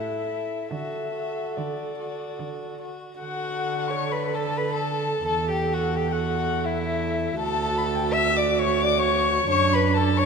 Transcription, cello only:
0.00 0.59 A2 soft
0.71 1.45 D3 soft
1.57 2.28 D3 soft
2.40 3.08 D3 soft
3.20 5.25 D3 soft
5.27 7.36 E2 medium
7.40 9.46 D2 medium
9.50 10.25 F#2 medium

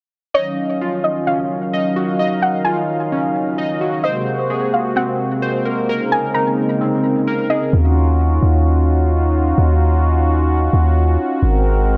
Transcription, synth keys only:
0.34 1.72 D#5 loud
0.81 2.20 F4 medium
1.27 2.66 C#4 medium
1.73 2.18 D#5 loud
1.96 3.35 F#4 medium
2.19 3.57 D#5 loud
2.66 4.04 F4 medium
3.12 4.04 C#4 medium
3.58 4.04 D#5 loud
3.81 4.04 F#4 medium
4.05 5.41 C5 loud
4.50 5.88 G#4 medium
4.96 5.88 C4 medium
5.42 5.89 C5 loud
5.65 5.88 A#4 medium
5.89 7.26 A#4 loud
6.34 7.73 D#4 medium
6.81 7.73 C4 medium
7.27 7.73 A#4 medium
7.50 7.73 G#4 medium

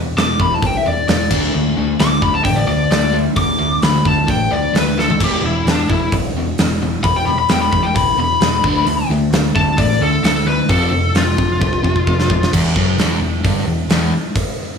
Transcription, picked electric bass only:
0.00 0.12 E1 medium
0.16 0.34 E1 medium
0.40 0.58 E1 medium
0.62 0.80 B1 medium
0.86 1.04 E1 medium
1.09 1.27 E1 medium
1.31 1.49 D2 medium
1.55 1.73 D2 loud
1.76 1.95 D2 medium
2.00 2.18 D2 medium
2.22 2.41 D2 loud
2.45 2.63 A1 medium
2.67 2.86 D2 medium
2.90 3.27 D2 medium
3.37 3.55 D2 loud
3.60 3.78 D2 medium
3.82 4.00 D2 medium
4.05 4.24 D2 medium
4.28 4.47 A1 medium
4.51 4.69 D2 medium
4.73 5.10 D2 medium
5.20 5.39 E1 loud
5.42 5.61 E1 medium
5.65 5.84 E1 medium
5.89 6.07 E1 medium
6.12 6.30 B1 medium
6.34 6.53 E1 medium
6.59 6.95 E1 medium
7.04 7.22 E1 medium
7.26 7.44 E1 medium
7.50 7.68 E1 medium
7.72 7.90 E1 medium
7.95 8.13 B1 medium
8.18 8.36 E1 medium
8.41 8.59 E1 medium
8.64 8.82 D2 medium
8.85 9.04 D2 loud
9.09 9.27 D2 medium
9.30 9.49 D2 medium
9.55 9.73 D2 medium
9.79 9.97 A1 medium
10.00 10.18 D2 medium
10.22 10.59 D2 medium
10.69 10.88 F1 loud
10.91 11.10 F1 medium
11.15 11.33 F1 loud
11.38 11.56 F1 loud
11.62 11.80 C2 medium
11.84 12.02 F1 medium
12.08 12.44 F1 medium
12.53 12.74 E1 medium
12.76 12.97 F#1 medium
12.98 13.19 E1 medium
13.19 13.41 E1 medium
13.45 13.65 G1 medium
13.65 13.87 E1 medium
13.88 14.10 E1 medium

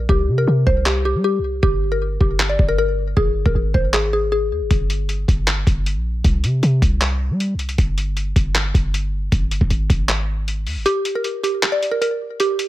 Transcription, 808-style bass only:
0.09 0.30 C2 loud
0.28 0.47 C3 loud
0.47 0.66 C3 loud
0.67 1.16 C2 loud
1.15 1.40 G3 medium
1.39 1.62 C2 medium
1.63 2.18 G1 loud
2.21 2.58 G1 loud
2.59 3.14 G1 loud
3.17 3.37 G#1 loud
3.36 3.45 G1 loud
3.46 3.54 G#1 loud
3.55 3.74 G#1 loud
3.74 4.53 G#1 loud
4.51 4.62 D#2 medium
4.61 4.70 G#1 loud
4.71 5.26 G1 loud
5.28 5.65 G1 loud
5.67 5.97 G1 loud
5.96 6.23 A#1 loud
6.24 6.45 C2 loud
6.44 6.62 C3 loud
6.63 6.81 C3 loud
6.82 7.32 C2 loud
7.30 7.56 G3 loud
7.54 7.77 C2 loud
7.78 8.34 G1 loud
8.36 8.73 G1 loud
8.75 9.30 G1 loud
9.32 9.53 G#1 loud
9.51 9.60 G1 loud
9.61 9.70 G#1 loud
9.70 9.89 G#1 loud
9.90 10.68 G#1 loud
10.67 10.78 D#2 medium
10.76 10.85 G#1 loud

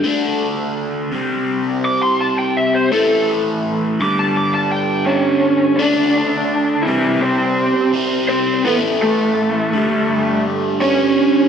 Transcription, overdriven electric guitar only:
0.04 1.10 D3 medium
0.04 1.11 A3 medium
0.04 1.12 D4 medium
1.12 2.90 C3 medium
1.12 2.91 G3 loud
1.12 2.92 C4 loud
2.92 3.98 A2 medium
2.92 3.99 E3 loud
2.92 4.00 A3 loud
4.00 5.77 G2 medium
4.00 5.78 D3 medium
4.00 5.79 G3 loud
5.79 6.85 D3 loud
5.79 6.86 A3 medium
5.83 6.87 D4 loud
6.87 7.93 C3 medium
6.87 7.94 G3 medium
6.87 7.94 C4 medium
7.94 8.64 C3 medium
7.94 8.65 G3 medium
7.94 8.66 C4 loud
8.65 9.71 A2 medium
8.65 9.73 E3 loud
8.65 9.73 A3 loud
9.73 10.79 G2 medium
9.73 10.80 D3 medium
9.73 10.81 G3 loud
10.80 11.48 G2 medium
10.80 11.48 D3 medium
10.80 11.48 G3 medium

